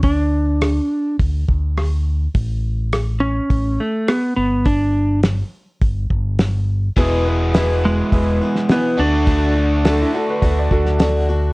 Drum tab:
HH |o---o---o---o---|o---o---o---o---|o---o---o---o---|o---o---o---o---|
SD |----r-------r---|----r-------r---|----o-------o---|----o------oo---|
BD |o-------o-o-----|o-------o-------|o-------o-o-----|o-------o-------|

HH |o---o---o---o---|
SD |----o------oo---|
BD |o-------o-o-----|